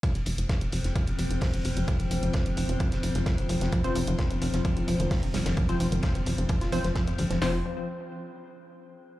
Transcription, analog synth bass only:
X:1
M:4/4
L:1/16
Q:1/4=130
K:Cphr
V:1 name="Analog synth bass" clef=bass
z F,,, F,,, F,,, z F,,, F,,, F,,, z F,,, F,,, F,,, z F,,, F,,, F,,, | z F,,, F,,, F,,, z F,,, F,,, F,,, z F,,, F,,, F,,, z F,,, F,,, F,,, | z F,,, F,,, F,,, z F,,, F,,, F,,, z F,,, F,,, F,,, z F,,, F,,, F,,, | z F,,, F,,, F,,, z F,,, F,,, F,,, z F,,, F,,, F,,, z F,, G,,, F,,, |
F,,,2 z12 z2 |]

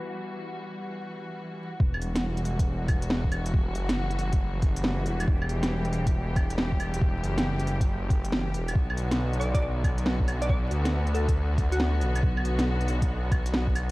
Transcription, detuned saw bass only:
X:1
M:4/4
L:1/8
Q:"Swing 16ths" 1/4=138
K:Em
V:1 name="Detuned saw bass" clef=bass
z8 | E,,,4 E,,,4- | E,,, F,,,6 E,,, | E,,,4 E,,,4- |
E,,, F,,,6 E,,, | B,,,4 B,,,4- | B,,, D,,6 B,,, | B,,,4 B,,,4 |]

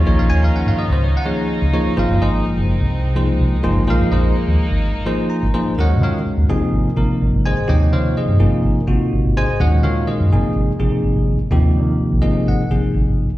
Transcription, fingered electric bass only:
X:1
M:4/4
L:1/16
Q:1/4=126
K:Ebdor
V:1 name="Fingered electric bass" clef=bass
B,,, B,,, E,,2 z A,, z D,,2 z4 D,, z2 | A,,, G,,, A,,,2 z G,,,2 C,,4- C,, C,, z G,,, A,,, | B,,, F,, B,,,2 z E,, z A,,,2 z4 A,,, z2 | E,,2 E,2 z E,, A,,, z A,,, z A,,, z A,,, A,,,2 z |
E,,2 E,2 z =G,, A,,, z A,,, z A,,, z A,,, A,,,2 z | E,,2 E,2 z G,, A,,, z A,,, z A,,, z A,,, A,,,2 z | E,,2 E,2 z B,,, A,,, z A,,, z A,,, z A,,, A,,,2 z |]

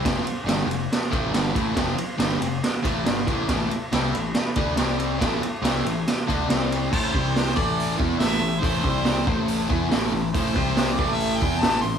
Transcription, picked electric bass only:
X:1
M:4/4
L:1/8
Q:1/4=140
K:Am
V:1 name="Picked electric bass" clef=bass
F,,, z G,,, F,,, z A,,, G,,, A,,, | F,,, z G,,, F,,, z A,,, G,,, A,,, | A,,, z C,, A,,, z D,, C,,2 | A,,, z C,, A,,, z D,, C,,2 |
A,,, C,,2 A,,,2 E,, A,,, A,,, | A,,, C,,2 A,,,2 E,, A,,, A,,, | A,,, C,,2 A,,,2 E,, A,,, A,,, |]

